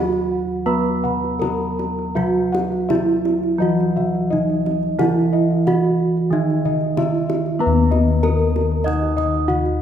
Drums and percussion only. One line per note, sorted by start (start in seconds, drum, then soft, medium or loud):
0.12 kendang slap soft
0.86 kendang slap soft
1.05 kendang low medium
1.24 kendang slap soft
1.42 kendang high medium
1.42 kendang low medium
1.61 kendang slap soft
1.79 kendang high medium
1.99 kendang slap soft
2.17 kendang low medium
2.36 kendang slap soft
2.55 kendang high medium
2.72 kendang slap soft
2.90 kendang high medium
2.90 kendang low medium
3.09 kendang slap soft
3.25 kendang high medium
3.43 kendang slap soft
3.80 kendang slap soft
3.97 kendang low soft
4.15 kendang slap soft
4.33 kendang low medium
4.50 kendang slap soft
4.66 kendang high medium
4.83 kendang slap soft
4.99 kendang high medium
4.99 kendang low medium
5.18 kendang slap soft
5.50 kendang slap soft
5.67 kendang high medium
5.67 kendang low medium
5.84 kendang slap soft
6.17 kendang slap soft
6.50 kendang slap soft
6.65 kendang low medium
6.81 kendang slap soft
6.97 kendang high medium
6.97 kendang low medium
7.15 kendang slap soft
7.30 kendang high medium
7.46 kendang slap soft
7.77 kendang slap soft
7.92 kendang high soft
8.08 kendang slap soft
8.24 kendang high medium
8.39 kendang slap soft
8.56 kendang high medium
8.56 kendang low medium
8.71 kendang slap soft
8.88 kendang low medium
9.03 kendang slap soft
9.18 kendang low medium
9.34 kendang slap soft
9.50 kendang low medium
9.66 kendang slap soft